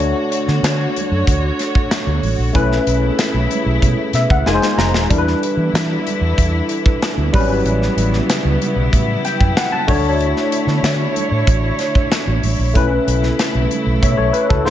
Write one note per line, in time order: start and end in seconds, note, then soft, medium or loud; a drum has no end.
0.00 0.12 D2 loud
0.00 2.53 D3 medium
0.00 2.18 A3 medium
0.00 2.19 D4 medium
0.00 2.19 F#4 medium
0.00 2.52 F#4 medium
0.00 2.19 C#5 medium
0.00 2.53 C#5 medium
0.00 closed hi-hat medium
0.00 muted conga soft
0.32 closed hi-hat medium
0.48 0.59 D3 medium
0.48 snare soft
0.48 high conga medium
0.63 0.85 D3 loud
0.63 snare loud
0.63 closed hi-hat loud
0.80 high conga medium
0.96 closed hi-hat medium
0.96 low conga medium
1.11 1.22 F#2 medium
1.27 1.49 D2 medium
1.27 kick loud
1.27 closed hi-hat medium
1.44 muted conga soft
1.59 snare soft
1.59 closed hi-hat medium
1.75 kick loud
1.91 snare loud
1.91 closed hi-hat medium
2.07 2.18 D2 medium
2.07 muted conga soft
2.07 high conga medium
2.22 2.34 A1 medium
2.22 open hi-hat medium
2.22 low conga medium
2.38 2.50 A#1 medium
2.53 2.77 B1 loud
2.53 4.45 C#3 medium
2.53 4.42 A3 medium
2.53 4.44 A3 medium
2.53 4.42 C#4 medium
2.53 4.44 E4 medium
2.53 4.43 E4 medium
2.53 4.43 B4 medium
2.53 kick loud
2.53 closed hi-hat medium
2.72 snare soft
2.87 3.09 B1 medium
2.87 closed hi-hat medium
3.03 high conga medium
3.19 snare loud
3.19 closed hi-hat loud
3.34 3.45 B1 medium
3.34 muted conga soft
3.34 high conga medium
3.51 closed hi-hat medium
3.51 low conga medium
3.66 3.77 B1 medium
3.82 3.93 B2 loud
3.82 kick loud
3.82 closed hi-hat medium
3.82 muted conga soft
3.82 low conga medium
3.99 muted conga soft
4.13 4.25 B2 loud
4.13 4.30 E5 medium
4.13 snare soft
4.13 closed hi-hat medium
4.30 4.41 C#2 medium
4.30 4.46 F#5 medium
4.30 kick loud
4.46 4.57 F1 loud
4.46 5.10 D#3 medium
4.46 5.10 G#3 medium
4.46 5.10 D#4 medium
4.46 5.10 F4 medium
4.46 5.11 F4 medium
4.46 4.54 A#4 medium
4.46 4.76 G#5 medium
4.46 snare medium
4.54 5.14 C5 medium
4.62 snare medium
4.62 high conga medium
4.78 4.94 F1 loud
4.78 5.08 A#5 medium
4.78 snare medium
4.78 high conga medium
4.78 low conga medium
4.94 5.05 D#1 medium
4.94 snare medium
5.09 5.33 E2 loud
5.09 7.32 D3 medium
5.09 9.85 E3 medium
5.09 7.29 G3 medium
5.09 7.29 D4 medium
5.09 7.31 E4 medium
5.09 7.30 E4 medium
5.09 5.18 A#4 medium
5.09 kick loud
5.09 closed hi-hat medium
5.18 7.33 B4 medium
5.27 snare soft
5.27 muted conga soft
5.43 closed hi-hat medium
5.57 5.68 E3 loud
5.57 high conga medium
5.73 5.96 E3 loud
5.73 snare loud
5.73 closed hi-hat loud
5.91 muted conga soft
5.91 high conga medium
6.07 closed hi-hat medium
6.07 low conga medium
6.21 6.32 E2 medium
6.38 6.60 E2 loud
6.38 kick loud
6.38 closed hi-hat medium
6.69 closed hi-hat medium
6.86 kick loud
7.02 snare loud
7.02 closed hi-hat medium
7.17 7.28 D2 medium
7.17 high conga medium
7.33 7.49 A1 loud
7.33 9.86 C#3 medium
7.33 9.85 F#3 medium
7.33 9.84 G3 medium
7.33 9.86 B3 medium
7.33 7.40 C4 medium
7.33 12.71 E4 medium
7.33 9.85 B4 medium
7.33 kick loud
7.33 open hi-hat medium
7.33 low conga medium
7.39 9.87 C#4 medium
7.49 7.60 G#1 loud
7.64 7.87 A1 loud
7.64 closed hi-hat medium
7.81 snare soft
7.81 muted conga soft
7.97 8.19 A1 loud
7.97 closed hi-hat medium
8.13 snare soft
8.13 high conga medium
8.29 snare loud
8.29 closed hi-hat loud
8.29 muted conga soft
8.44 8.56 C#2 medium
8.44 muted conga soft
8.44 high conga medium
8.62 closed hi-hat medium
8.62 low conga medium
8.76 8.87 B1 medium
8.93 9.15 A2 medium
8.93 kick loud
8.93 closed hi-hat medium
9.09 muted conga soft
9.25 9.54 G5 medium
9.25 snare soft
9.25 closed hi-hat medium
9.40 9.52 F#2 medium
9.40 kick loud
9.57 9.72 F#5 medium
9.57 snare loud
9.57 closed hi-hat medium
9.72 10.17 A5 medium
9.72 high conga medium
9.87 10.32 D2 loud
9.87 12.73 D3 medium
9.87 12.39 A3 medium
9.87 12.39 D4 medium
9.87 12.39 F#4 medium
9.87 12.40 C#5 medium
9.87 12.73 C#5 medium
9.87 kick loud
9.87 open hi-hat medium
9.87 low conga medium
10.20 closed hi-hat medium
10.20 muted conga soft
10.36 snare soft
10.36 muted conga soft
10.52 closed hi-hat medium
10.67 10.78 D3 medium
10.67 snare soft
10.67 high conga medium
10.83 11.05 D3 loud
10.83 snare loud
10.83 closed hi-hat loud
10.99 muted conga soft
10.99 high conga medium
11.16 closed hi-hat medium
11.16 low conga medium
11.31 11.42 A2 medium
11.47 11.69 A1 loud
11.47 kick loud
11.47 closed hi-hat medium
11.63 muted conga soft
11.79 snare soft
11.79 closed hi-hat medium
11.95 kick loud
12.12 snare loud
12.12 closed hi-hat medium
12.27 12.38 A1 medium
12.27 high conga medium
12.42 12.54 A1 medium
12.42 open hi-hat medium
12.42 low conga medium
12.59 12.75 A#1 medium
12.74 12.97 B1 loud
12.74 14.64 C#3 medium
12.74 14.61 A3 medium
12.74 14.64 A3 medium
12.74 14.62 C#4 medium
12.74 14.64 E4 medium
12.74 14.63 E4 medium
12.74 14.01 B4 medium
12.74 kick loud
12.74 closed hi-hat medium
13.07 13.29 B1 loud
13.07 closed hi-hat medium
13.23 snare soft
13.23 high conga medium
13.39 snare loud
13.39 closed hi-hat loud
13.55 13.66 B1 medium
13.55 muted conga soft
13.55 high conga medium
13.71 closed hi-hat medium
13.71 low conga medium
13.86 13.97 B1 medium
14.02 14.14 B2 loud
14.02 14.16 C#5 medium
14.02 14.18 E5 medium
14.02 kick loud
14.02 closed hi-hat medium
14.17 14.29 B1 medium
14.17 14.33 A4 medium
14.17 14.33 C#5 medium
14.33 14.49 B4 medium
14.33 closed hi-hat medium
14.49 14.61 C#2 medium
14.49 14.70 F#4 medium
14.49 14.70 A4 medium
14.49 kick loud
14.65 14.70 F1 loud
14.65 14.70 D#3 medium
14.65 14.70 G#3 medium
14.65 14.70 D#4 medium
14.65 14.70 F4 medium
14.65 14.70 C5 medium
14.65 snare medium